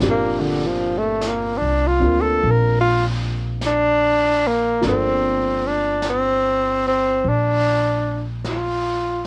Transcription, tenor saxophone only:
0.10 0.42 A#3 medium
0.40 0.68 D3 medium
0.66 1.00 F3 medium
0.98 1.29 A3 medium
1.28 1.59 A#3 medium
1.58 1.89 D4 medium
1.87 2.23 F4 medium
2.21 2.52 A4 medium
2.51 2.80 A#4 medium
2.81 3.05 F4 medium
3.66 4.49 D4 medium
4.47 4.85 A#3 medium
4.88 5.69 C4 medium
5.68 6.06 D4 medium
6.09 6.83 C4 medium
6.88 7.31 C4 medium
7.29 8.29 D4 medium
8.49 9.27 F4 medium

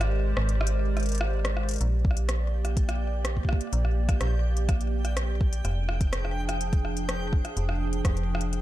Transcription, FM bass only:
0.00 0.34 G#1 medium
0.37 1.78 G#1 loud
1.81 3.57 A#1 medium
3.73 4.17 A#1 medium
4.21 5.61 A#1 medium
5.65 7.41 F1 medium
7.57 8.01 F1 medium
8.05 8.62 F1 loud

